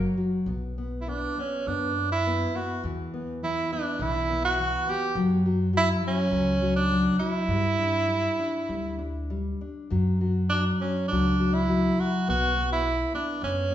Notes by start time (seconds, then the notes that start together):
Already playing: F#3 A#3
0.17 F#3
0.46 B1 B3
0.78 B3
1.01 E4
1.08 B3 D4
1.38 B3 C#4
1.67 F#2 B3 D4
1.97 B3
2.12 E4
2.27 B3
2.56 B3 F#4
2.84 E2 E3
3.14 B3
3.44 E3 E4
3.72 B3 D4
3.99 B1 E3 E4
4.29 B3
4.45 F#4
4.59 E3
4.87 B3 G4
5.15 F#2 F#3
5.46 F#3
5.73 F#3
5.77 E4
6.02 F#3
6.07 C#4
6.30 C#2 F#3
6.62 F#3
6.76 D4
6.91 F#3
7.19 F#3 E4
7.48 G2 G3
7.79 D4
8.08 G3
8.39 D4
8.69 D2 G3
8.99 D4
9.30 G3
9.61 D4
9.90 F#2 F#3
10.21 F#3
10.50 F#3 D4
10.81 F#3 C#4
11.08 C#2 F#3 D4
11.40 F#3
11.54 E4
11.68 F#3
11.98 F#3 F#4
12.28 B1 B3 F#4
12.57 B3
12.72 E4
13.14 B3 D4
13.42 F#2 B3 C#4
13.70 B3